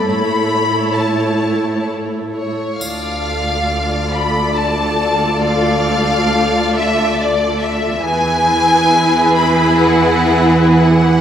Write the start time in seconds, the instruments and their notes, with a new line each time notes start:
Already playing: viola section A3, violin section A4
0.08 cello section A2, viola section E4, violin section C#5 B5
0.99 violin section A5
2.36 violin section C#5
2.79 cello section D2, viola section A3 F4, violin section A4 D5 F5, triangle
4.12 violin section B5
4.55 violin section A5
5.42 violin section F5
6.75 violin section E5
7.20 violin section D5
7.61 violin section E5
8.04 cello section E2, viola section E3 E4, violin section G#4 B4 G#5
9.36 violin section B5
9.82 violin section F#5
10.72 violin section F#5